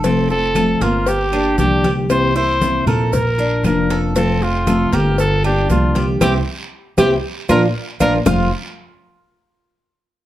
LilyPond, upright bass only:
\new Staff \with { instrumentName = "Upright bass" } { \clef bass \time 4/4 \key f \major \tempo 4 = 117 f,,4. g,,4. c,4~ | c,4. bes,,4. f,,4~ | f,,4. g,,4. c,4 | c,8 r4 c,8 r8 bes,,8 r8 bes,,8 |
f,,8 r2. r8 | }